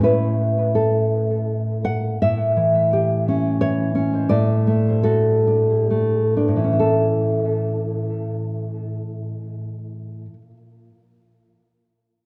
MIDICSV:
0, 0, Header, 1, 2, 480
1, 0, Start_track
1, 0, Key_signature, 3, "major"
1, 0, Tempo, 728155
1, 20, Time_signature, 3, 2, 24, 8
1, 1460, Tempo, 692841
1, 2900, Tempo, 750939
1, 3380, Tempo, 854701
1, 3860, Tempo, 920245
1, 4340, Tempo, 867052
1, 6260, Tempo, 848656
1, 7374, End_track
2, 0, Start_track
2, 0, Title_t, "Nylon-string guitar"
2, 0, Program_c, 0, 24
2, 0, Note_on_c, 0, 45, 43
2, 8, Note_on_c, 0, 61, 34
2, 20, Note_on_c, 0, 64, 31
2, 23, Note_on_c, 0, 71, 58
2, 480, Note_off_c, 0, 71, 0
2, 494, Note_on_c, 0, 69, 44
2, 1195, Note_off_c, 0, 69, 0
2, 1216, Note_on_c, 0, 78, 69
2, 1422, Note_off_c, 0, 45, 0
2, 1428, Note_off_c, 0, 61, 0
2, 1434, Note_off_c, 0, 64, 0
2, 1448, Note_off_c, 0, 78, 0
2, 1462, Note_on_c, 0, 76, 62
2, 1469, Note_on_c, 0, 45, 52
2, 1703, Note_on_c, 0, 52, 40
2, 1955, Note_on_c, 0, 67, 43
2, 2201, Note_on_c, 0, 61, 48
2, 2396, Note_off_c, 0, 76, 0
2, 2423, Note_off_c, 0, 52, 0
2, 2426, Note_on_c, 0, 73, 77
2, 2431, Note_on_c, 0, 52, 39
2, 2653, Note_off_c, 0, 61, 0
2, 2662, Note_on_c, 0, 61, 50
2, 2665, Note_off_c, 0, 67, 0
2, 2878, Note_off_c, 0, 45, 0
2, 2884, Note_off_c, 0, 73, 0
2, 2900, Note_on_c, 0, 74, 73
2, 2902, Note_off_c, 0, 61, 0
2, 2903, Note_on_c, 0, 45, 54
2, 2905, Note_off_c, 0, 52, 0
2, 3141, Note_on_c, 0, 57, 45
2, 3361, Note_off_c, 0, 74, 0
2, 3373, Note_on_c, 0, 69, 61
2, 3379, Note_on_c, 0, 66, 47
2, 3621, Note_on_c, 0, 62, 43
2, 3856, Note_off_c, 0, 57, 0
2, 3863, Note_on_c, 0, 57, 35
2, 4081, Note_off_c, 0, 69, 0
2, 4098, Note_off_c, 0, 62, 0
2, 4104, Note_off_c, 0, 66, 0
2, 4104, Note_on_c, 0, 62, 39
2, 4157, Note_off_c, 0, 45, 0
2, 4163, Note_on_c, 0, 45, 37
2, 4205, Note_on_c, 0, 52, 30
2, 4245, Note_off_c, 0, 62, 0
2, 4247, Note_on_c, 0, 61, 33
2, 4292, Note_on_c, 0, 64, 33
2, 4327, Note_on_c, 0, 69, 39
2, 4342, Note_off_c, 0, 57, 0
2, 6240, Note_off_c, 0, 45, 0
2, 6285, Note_off_c, 0, 52, 0
2, 6330, Note_off_c, 0, 61, 0
2, 6379, Note_off_c, 0, 64, 0
2, 6417, Note_off_c, 0, 69, 0
2, 7374, End_track
0, 0, End_of_file